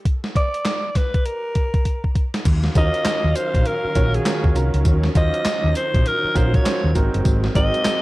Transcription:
0.05 kick, closed hi-hat
0.24 snare
0.35 D5, kick, closed hi-hat
0.54 closed hi-hat
0.65 snare, clap, closed hi-hat
0.95 B4, kick, snare, closed hi-hat
1.14 kick, closed hi-hat
1.26 A#4, closed hi-hat
1.55 kick, closed hi-hat
1.74 kick, closed hi-hat
1.85 kick, closed hi-hat
2.04 kick
2.15 kick, closed hi-hat
2.34 snare, closed hi-hat
2.45 D#2 D#3 F#3 C#4 F5, kick, closed hi-hat, crash, tambourine
2.64 snare
2.75 D#2 C#4 F4 F#4 A#4 D#5, kick, closed hi-hat, tambourine
2.94 closed hi-hat
3.05 muted fingered electric bass stroke, snare, clap, closed hi-hat, tambourine
3.24 D#2
3.35 C5, closed hi-hat, tambourine
3.54 A#1, kick, closed hi-hat
3.66 A#4, closed hi-hat
3.84 muted fingered electric bass stroke
3.95 A#1 C#4 F4 F#4 C#5, kick, closed hi-hat, tambourine
4.14 G#4, closed hi-hat
4.25 C#4 F4 F#4 A#4, snare, clap, closed hi-hat, tambourine
4.44 D#2, kick
4.55 C2 C#4 F4 F#4 A#4, closed hi-hat, tambourine
4.74 C#2, closed hi-hat
4.85 D#2 D#4, kick, closed hi-hat, tambourine
5.04 snare
5.15 D#2 C#4 F4 F#4 C5 D#5, kick, closed hi-hat, tambourine
5.34 closed hi-hat
5.45 muted fingered electric bass stroke, snare, clap, closed hi-hat, tambourine
5.64 D#2
5.75 C5, closed hi-hat, tambourine
5.94 A#1, kick, closed hi-hat
6.06 A#4, closed hi-hat
6.24 muted fingered electric bass stroke
6.35 A#1 C#4 F4 F#4 A#4 C5, kick, closed hi-hat, tambourine
6.54 C#5, kick, closed hi-hat
6.65 C#4 F4 F#4 C5, snare, clap, closed hi-hat, tambourine
6.84 D#2
6.95 G#1 C3 G#3 C4 D#4 F#4 A#4, kick, closed hi-hat, tambourine
7.14 F#1, closed hi-hat
7.25 G#1, kick, closed hi-hat, tambourine
7.44 snare
7.55 G#1 C4 D#4 F#4 A#4 D#5, kick, closed hi-hat, tambourine
7.74 closed hi-hat
7.85 muted fingered electric bass stroke, snare, clap, closed hi-hat, tambourine

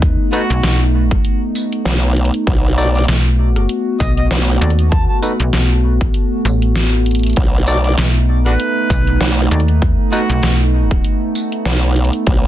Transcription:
Already playing: D#2 A3 B3 D#4
0.02 kick, closed hi-hat
0.33 B3 D#4 F#4 A4 B4, closed hi-hat, tambourine
0.50 B1, closed hi-hat
0.63 B1, snare
1.11 kick, cross-stick, closed hi-hat
1.25 closed hi-hat
1.55 tambourine
1.72 closed hi-hat
1.85 B1, snare, closed hi-hat
2.17 closed hi-hat
2.25 closed hi-hat
2.34 closed hi-hat
2.46 B1 F#4, kick, closed hi-hat
2.78 D#4 F#4 A4 D5, closed hi-hat, tambourine
2.95 D5, closed hi-hat
2.98 closed hi-hat
3.04 closed hi-hat
3.08 B1, snare
3.56 cross-stick, closed hi-hat
3.69 closed hi-hat
4.00 B1 D#5, kick, tambourine
4.17 D#5, closed hi-hat
4.31 B1, snare, closed hi-hat
4.61 D#2 D#4 F#4 A4 D5, closed hi-hat
4.70 closed hi-hat
4.79 closed hi-hat
4.92 A5, kick, closed hi-hat
5.09 A5
5.22 D#4 F#4 A4 B4, closed hi-hat, tambourine
5.40 B1, closed hi-hat
5.53 B1, snare
5.95 A#1
6.01 kick, cross-stick, closed hi-hat
6.14 closed hi-hat
6.45 A1, tambourine
6.62 closed hi-hat
6.76 snare, closed hi-hat
7.06 closed hi-hat
7.11 closed hi-hat
7.15 closed hi-hat
7.19 closed hi-hat
7.23 closed hi-hat
7.26 closed hi-hat
7.30 closed hi-hat
7.33 closed hi-hat
7.36 B1 D#4, kick, closed hi-hat
7.45 closed hi-hat
7.49 closed hi-hat
7.67 D#4 F#4 A4 D5, closed hi-hat, tambourine
7.84 D5, closed hi-hat
7.98 B1, snare
8.40 A#1
8.46 D4 F#4 B4, cross-stick, closed hi-hat
8.60 closed hi-hat
8.90 B1, kick, tambourine
9.07 closed hi-hat
9.21 B1, snare, closed hi-hat
9.51 D#2 D#4 F#4 A4 D5, closed hi-hat
9.60 closed hi-hat
9.68 closed hi-hat
9.82 kick, closed hi-hat
10.12 B3 D#4 F#4 A4 B4, closed hi-hat, tambourine
10.30 B1, closed hi-hat
10.43 B1, snare
10.91 kick, cross-stick, closed hi-hat
11.05 closed hi-hat
11.35 tambourine
11.52 closed hi-hat
11.65 B1, snare, closed hi-hat
11.96 closed hi-hat
12.05 closed hi-hat
12.13 closed hi-hat
12.26 B1 D4, kick, closed hi-hat

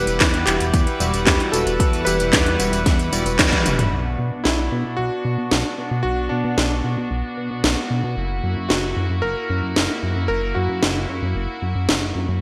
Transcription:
Already playing: E3 G3 E4 G4 B4 F#5
0.07 E1, closed hi-hat, tambourine
0.20 E2, kick, snare, clap, closed hi-hat, tambourine
0.34 closed hi-hat, tambourine
0.46 E1 G3 E4 F#4 G4 B4, clap, closed hi-hat, tambourine
0.60 E1, closed hi-hat, tambourine
0.74 E2, kick, closed hi-hat, tambourine
0.87 closed hi-hat, tambourine
1.00 E1 G3 E4 F#4 D5, closed hi-hat, tambourine
1.13 E1 G3 E4 F#4 B4, closed hi-hat, tambourine
1.25 E2 E4 G4, kick, snare, clap, closed hi-hat, tambourine
1.40 closed hi-hat, tambourine
1.52 E1 G3 E4 F#4 A4 B4, closed hi-hat, tambourine
1.67 E1, closed hi-hat, tambourine
1.80 E2, kick, closed hi-hat, tambourine
1.93 closed hi-hat, tambourine
2.05 E1 G3 E4 G4 B4 F#5, closed hi-hat, tambourine
2.20 E1, closed hi-hat, tambourine
2.33 E2, kick, snare, clap, closed hi-hat, tambourine
2.46 closed hi-hat, tambourine
2.59 E1 G3 E4 F#4 B4, closed hi-hat, tambourine
2.73 E1, closed hi-hat, tambourine
2.86 E2, kick, snare, closed hi-hat, tambourine
2.99 closed hi-hat, tambourine
3.12 E1 G3 E4 F#4 D5, closed hi-hat, tambourine
3.26 E1 G3 E4 F#4 B4, closed hi-hat, tambourine
3.39 E2, kick, snare, clap, closed hi-hat, tambourine
3.52 kick, closed hi-hat, high tom, tambourine
3.66 E1 G3 E4 F#4 B4, closed hi-hat, mid tom, tambourine
3.79 E1, closed hi-hat, mid tom, tambourine
3.92 B1 B3 D4 F#4
4.19 B2
4.32 B2
4.44 B1 E4, snare
4.72 B2
4.85 B2
4.97 B1 F#4
5.25 B2
5.38 B2
5.51 B1, snare
5.78 B2
5.91 B2
6.03 B1 F#4
6.29 B2 D4
6.44 B2
6.58 B1, snare
6.84 B2
6.97 B2
7.11 B1
7.37 B2
7.51 B2
7.64 B1, snare
7.90 B2
8.04 B2
8.17 F#1 A#3 E4
8.44 F#2
8.57 F#2
8.69 F#1 F#4, snare
8.97 F#2
9.10 F#2
9.22 F#1 A#4
9.50 F#2
9.63 F#2
9.76 F#1, snare
10.03 F#2
10.16 F#2
10.28 F#1 A#4
10.55 F#2 F#4
10.69 F#2
10.83 F#1, snare
11.09 F#2
11.22 F#2
11.36 F#1
11.62 F#2
11.75 F#2
11.89 F#1, snare
12.15 F#2
12.28 F#2

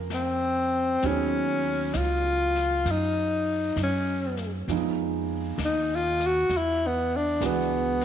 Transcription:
Already playing: F2 C#3 F3 A#3 C4 G#4
0.10 C4, snare, hi-hat pedal
1.02 D#2 F#3 B3 C#4 D#4 G#4, brush sweep, snare
1.94 C#2 D#4 F4, snare, hi-hat pedal
2.56 snare
2.85 F#2, brush sweep, snare
2.91 D#4
3.76 F#2, snare, hi-hat pedal
3.83 C#4
4.37 snare
4.68 F2 F3 G#3 B3 D#4 G#4, brush sweep, snare
5.58 D#2, snare, hi-hat pedal
5.65 D#4
5.96 F4
6.20 snare
6.26 F#4
6.49 E2, brush sweep, snare
6.57 E4
6.87 B3
7.16 D4
7.40 C#2 E3 G#3 B3 D4 F#4, snare, hi-hat pedal
7.46 B3
8.01 snare

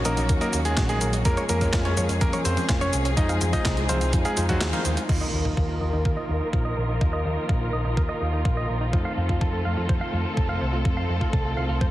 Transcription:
Already playing: D#3 F#3 A#3 C#4 F#4
0.05 A#1 F#3 A#3 C#4 D#4 A#4 D#5, closed hi-hat, high tom, cabasa
0.17 A#1 D#4, closed hi-hat, cabasa
0.29 D#2 A#4, kick, closed hi-hat, cabasa
0.41 A#3 A#4 D#5, closed hi-hat, cabasa
0.53 D#2 D#4, closed hi-hat, cabasa
0.65 G#3 D#4 G#4, closed hi-hat, cabasa
0.77 A#1 F#4, kick, snare, clap, closed hi-hat, cabasa
0.89 G#3 G#4 D#5, closed hi-hat, cabasa
1.01 A#1 A#4, closed hi-hat, cabasa
1.13 D#4, closed hi-hat, cabasa
1.25 F2 F3 G#3 A#3 C#4 F4 G#4 A#4, kick, closed hi-hat, cabasa
1.37 C#5, closed hi-hat, cabasa
1.49 F2 A#3 C#4 A#4, closed hi-hat, high tom, cabasa
1.61 G#3 C#4 F4 A#4, kick, closed hi-hat, cabasa
1.73 F2 F4, kick, snare, clap, closed hi-hat, cabasa
1.85 C#4 F4 C#5, closed hi-hat
1.97 F2 G#3 C#4 F4 A#4 C#5, closed hi-hat, cabasa
2.09 F2 C#4, closed hi-hat, cabasa
2.21 F2 A#3 G#4 A#4, kick, closed hi-hat, cabasa
2.33 C#5, closed hi-hat, high tom, cabasa
2.45 F2 C4 C#4 C5, closed hi-hat, cabasa
2.57 C#4, closed hi-hat, high tom, cabasa
2.69 F1 F4, kick, snare, clap, closed hi-hat, cabasa
2.81 C#4 C#5, closed hi-hat, cabasa
2.93 C2 G#4, closed hi-hat, cabasa
3.05 C#4, closed hi-hat, cabasa
3.17 F2 G#3 C4 D#4 F4 C5 D#5, kick, closed hi-hat, cabasa
3.29 F5, closed hi-hat, cabasa
3.41 F2 F4, closed hi-hat, high tom, cabasa
3.53 G#3 D#4 F4 C5 D#5, kick, closed hi-hat, cabasa
3.65 C2 G#4, kick, snare, clap, closed hi-hat, cabasa
3.77 G#4, closed hi-hat
3.89 C2 G#3 C4 D#4 F4 C5 F5, closed hi-hat, high tom, cabasa
4.01 C2 F4, closed hi-hat, cabasa
4.13 F2 C5, kick, closed hi-hat, cabasa
4.25 G#3 G#4 F5, closed hi-hat, cabasa
4.37 F2 G#3 D#4 F4 C5, closed hi-hat, cabasa
4.49 F#3 G#3 D#4 F4 F#4 C5, kick, snare, closed hi-hat, high tom, cabasa
4.61 D#2 G#4, snare, clap, closed hi-hat, cabasa
4.73 D#3 D#4 F5, closed hi-hat, high tom, cabasa
4.85 D#2 C5, closed hi-hat, cabasa
4.97 F4, closed hi-hat, cabasa
5.09 D#2 D#3 F3 A#3 D#4 F4 A#4 D#5, kick, crash, impact
5.21 D#5
5.33 D#2 D#4
5.45 D#4, kick
5.57 D#2 F4, kick
5.69 F4
5.81 D#2 D#5
5.93 D#2 D#4
6.05 D#2 A#4, kick
6.17 D#5
6.29 D#2 D#4
6.41 D#4
6.53 A#1 F4, kick
6.65 D#5
6.77 A#1 A#4
6.89 D#4
7.01 D#2 D#4, kick
7.13 D#5
7.25 D#2 D#4
7.37 D#4
7.49 A#1 F4, kick
7.61 F4
7.73 A#1 D#5
7.85 A#1 D#4
7.97 D#2 A#4, kick
8.09 D#5
8.21 D#2 D#4
8.33 D#4
8.45 A#1 F4, kick
8.57 D#5
8.69 A#1 A#4
8.81 D#4
8.93 F2 A3 C4 D#4 F4 A4 C5, kick
9.05 F5
9.17 F2 F4
9.29 F4, kick
9.41 F2 A4, kick
9.53 A4
9.65 F2 F5
9.77 F2 F4
9.89 F2 C5, kick
10.01 F5
10.13 F2 F4
10.25 F4
10.37 F1 A4, kick
10.49 F5
10.61 C2 C5
10.73 F4
10.85 F2 F4, kick
10.97 F5
11.09 F2 F4
11.21 F4, kick
11.33 C2 A4, kick
11.45 A4
11.57 C2 F5
11.69 C2 F4
11.81 F2 C5, kick

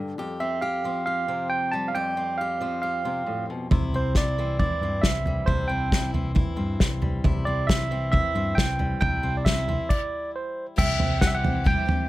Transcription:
Already playing: G2 D3 D4 G4
0.18 F2 G4
0.40 C4 E5
0.61 G4 F5
0.84 F3 C4
1.06 G4 F5
1.28 C3 C4
1.50 G5
1.72 G3 A5
1.88 F5
1.95 F2 G4 G5
2.17 C4
2.38 G4 F5
2.61 F3 C4
2.82 G4 F5
3.05 C3 C4
3.26 A2
3.50 B2
3.71 C2 C3 E4, kick, floor tom
3.93 C2 C4 C5
4.15 E4 D5, kick, snare
4.38 E3 C4
4.59 E4 D5, kick, floor tom
4.82 G2 C4
5.02 C2 E5, kick, snare
5.26 G3, floor tom
5.46 C2 C3 E4 C5, kick, floor tom
5.68 C2 C4 G5
5.92 E4, kick, snare
6.14 E3 C4, floor tom
6.35 E4, kick, floor tom
6.56 G2 C4
6.80 C2, kick, snare
7.02 G3, floor tom
7.24 C2 C3 E4, kick, floor tom
7.45 C2 C4 D5
7.67 E4 E5, kick, snare
7.91 E3 C4
8.12 E4 E5, kick, floor tom
8.35 G2 C4
8.55 C2 G5, kick, snare
8.79 G3, floor tom
9.00 C2 C3 E4 G5, kick, floor tom
9.23 C2 C4
9.37 D5
9.45 E4 E5, kick, snare
9.68 E3 C4, floor tom
9.89 D5, kick, crash
10.36 C5
10.76 C2 C3 E3 G3 C4 E4 G4 C5 E5 G5, kick, floor tom, crash
10.99 C2 C4 E4 C5, floor tom
11.21 G3 C4 E4 C5 F#5, kick, snare, floor tom
11.27 E5
11.35 F#5
11.44 C4 E4 C5, floor tom
11.64 C3 G3 C4 E4 C5 G5, kick, floor tom
11.86 C4 E4 C5, floor tom

